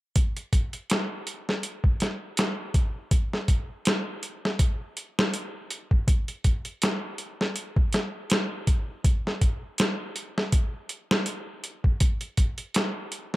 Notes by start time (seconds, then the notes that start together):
0.16 kick, closed hi-hat
0.37 closed hi-hat
0.53 kick, closed hi-hat
0.73 closed hi-hat
0.90 snare, closed hi-hat
1.27 closed hi-hat
1.49 snare
1.63 closed hi-hat
1.84 kick
2.00 snare, closed hi-hat
2.37 snare, closed hi-hat
2.74 kick, closed hi-hat
3.11 kick, closed hi-hat
3.33 snare
3.48 kick, closed hi-hat
3.85 snare, closed hi-hat
4.23 closed hi-hat
4.45 snare
4.59 kick, closed hi-hat
4.97 closed hi-hat
5.19 snare
5.34 closed hi-hat
5.71 closed hi-hat
5.91 kick
6.08 kick, closed hi-hat
6.28 closed hi-hat
6.44 kick, closed hi-hat
6.65 closed hi-hat
6.82 snare, closed hi-hat
7.18 closed hi-hat
7.41 snare
7.56 closed hi-hat
7.76 kick
7.93 snare, closed hi-hat
8.30 snare, closed hi-hat
8.67 kick, closed hi-hat
9.04 kick, closed hi-hat
9.27 snare
9.41 kick, closed hi-hat
9.78 snare, closed hi-hat
10.16 closed hi-hat
10.38 snare
10.52 kick, closed hi-hat
10.89 closed hi-hat
11.11 snare
11.26 closed hi-hat
11.64 closed hi-hat
11.84 kick
12.00 kick, closed hi-hat
12.21 closed hi-hat
12.37 kick, closed hi-hat
12.58 closed hi-hat
12.74 snare, closed hi-hat
13.12 closed hi-hat